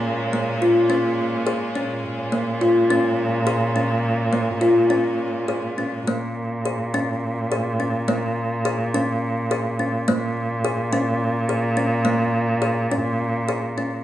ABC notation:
X:1
M:7/8
L:1/8
Q:1/4=105
K:Bbm
V:1 name="Kalimba"
z B, F D2 A D | z B, F D2 A D | z B, F D2 A D | B,2 A D2 A D |
B,2 A D2 A D | B,2 A D2 A D | B,2 A D2 A D |]
V:2 name="String section" clef=bass
[B,,A,D]6- [B,,A,D]- | [B,,A,D]6- [B,,A,D]- | [B,,A,D]6- [B,,A,D] | z6 z |
z6 z | z6 z | z6 z |]
V:3 name="Cello" clef=bass
B,,6- B,, | B,,6- B,,- | B,,6- B,, | B,,6- B,,- |
B,,6- B,, | B,,6- B,,- | B,,6- B,, |]